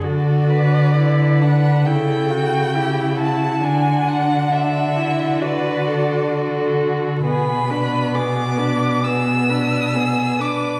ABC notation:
X:1
M:4/4
L:1/8
Q:1/4=67
K:Dlyd
V:1 name="Violin"
d3 f =g3 a | g f e2 d3 z | b2 d'2 e'3 d' |]
V:2 name="Violin"
A B B2 A2 =G F- | F4 B A A2 | G B G B G B G B |]
V:3 name="Viola"
F2 E D E F E2 | D2 D E F2 F2 | B, D B, D B, D B, D |]
V:4 name="Cello" clef=bass
D,4 C,4 | D,8 | B,,8 |]